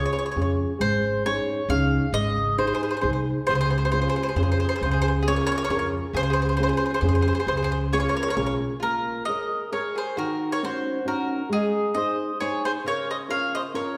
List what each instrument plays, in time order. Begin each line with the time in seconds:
Already playing: nylon-string guitar C#4 F4 G#4
0.06 mandolin C#5
0.13 mandolin C#5
0.19 mandolin C#5
0.26 mandolin C#5
0.32 mandolin C#5
0.36 upright bass F2, nylon-string guitar C#4 F4 G#4
0.42 mandolin C#5
0.79 upright bass G#1, nylon-string guitar G#3, mandolin C5
1.25 nylon-string guitar C#4 D#4 G#4, mandolin C#5
1.69 upright bass C#2, nylon-string guitar C#4 D#4 G#4, mandolin F5
2.13 upright bass G#1, nylon-string guitar G#3, mandolin D#5
2.58 nylon-string guitar D#4 G#4 C5, mandolin G#4 C5
2.67 mandolin G#4 C5
2.74 mandolin G#4 C5
2.83 mandolin G#4 C5
2.89 mandolin G#4 C5
2.95 mandolin G#4 C5
3.01 upright bass C2, nylon-string guitar D#4 G#4 C5, mandolin G#4 C5
3.09 mandolin G#4 C5
3.47 upright bass C#2, nylon-string guitar C#3, mandolin G#4 C5
3.55 mandolin G#4 C5
3.61 mandolin C5
3.65 mandolin G#4
3.70 mandolin G#4 C5
3.78 mandolin G#4 C5
3.85 mandolin G#4 C5
3.92 nylon-string guitar C#4 F4 G#4, mandolin G#4 C5
4.01 mandolin G#4 C5
4.08 mandolin G#4 C5
4.16 mandolin G#4 C5
4.22 mandolin G#4 C5
4.29 mandolin G#4 C5
4.36 upright bass F2, nylon-string guitar C#4 F4 G#4, mandolin G#4 C5
4.43 mandolin G#4 C5
4.52 mandolin G#4 C5
4.58 mandolin G#4 C5
4.64 mandolin G#4
4.69 mandolin G#4 C5
4.76 mandolin G#4 C5
4.81 upright bass C#2, nylon-string guitar C#3, mandolin C5
4.86 mandolin G#4
4.91 mandolin G#4 C5
5.02 mandolin G#4 C5
5.08 mandolin C5
5.23 mandolin G#4
5.27 nylon-string guitar C#4 F4 G#4, mandolin C#5
5.32 mandolin A#4
5.36 mandolin C#5
5.41 mandolin A#4
5.47 mandolin A#4 C#5
5.52 mandolin A#4 C#5
5.58 mandolin C#5
5.64 mandolin A#4 C#5
5.69 upright bass F2, nylon-string guitar C#4 F4 G#4, mandolin A#4 C#5
5.78 mandolin A#4 C#5
6.13 upright bass C#2, nylon-string guitar C#3, mandolin G#4 C5
6.22 mandolin G#4 C5
6.30 mandolin G#4 C5
6.39 mandolin G#4 C5
6.45 mandolin G#4 C5
6.53 mandolin G#4
6.57 nylon-string guitar C#4 F4 G#4, mandolin G#4 C5
6.63 mandolin C5
6.68 mandolin G#4 C5
6.73 mandolin G#4
6.77 mandolin C5
6.84 mandolin G#4 C5
6.91 mandolin G#4 C5
6.96 mandolin G#4
7.01 upright bass F2, nylon-string guitar C#4 F4 G#4, mandolin C5
7.06 mandolin G#4 C5
7.13 mandolin G#4 C5
7.21 mandolin G#4 C5
7.27 mandolin G#4 C5
7.33 mandolin G#4 C5
7.39 mandolin G#4 C5
7.47 upright bass C#2, nylon-string guitar C#3, mandolin G#4 C5
7.56 mandolin G#4 C5
7.62 mandolin G#4 C5
7.71 mandolin G#4 C5
7.92 nylon-string guitar C#4 F4 G#4, mandolin G#4 C#5
7.99 mandolin A#4 C#5
8.08 mandolin A#4 C#5
8.15 mandolin A#4 C#5
8.22 mandolin A#4 C#5
8.28 mandolin A#4 C#5
8.35 upright bass B1, nylon-string guitar C#4 F4 G#4, mandolin A#4 C#5
8.42 mandolin A#4
8.46 mandolin C#5
8.80 nylon-string guitar A#3, mandolin F4 A#4
9.25 nylon-string guitar G#4 A#4 C#5, mandolin A#4 D#5
9.72 nylon-string guitar G#4 A#4 C#5, mandolin A#4 C#5
9.95 mandolin G#4 C5
10.17 nylon-string guitar D#3, mandolin F#4 A#4
10.52 mandolin A#4 C#5
10.63 nylon-string guitar C#4 D#4 F#4, mandolin F#4 C5
11.05 nylon-string guitar C#4 D#4 F#4, mandolin F#4 A#4
11.49 nylon-string guitar G#3, mandolin D#4 G#4
11.94 nylon-string guitar D#4 G#4 C5, mandolin C5 D#5
12.40 nylon-string guitar D#4 G#4 C5, mandolin G#4 C#5
12.65 mandolin G#4 C5
12.84 nylon-string guitar C#3, mandolin A#4 C#5
13.10 mandolin C5 D#5
13.28 nylon-string guitar C#4 F4 A#4, mandolin C#5 F5
13.55 mandolin C5 D#5
13.74 nylon-string guitar C#4 F4 A#4, mandolin A#4 C#5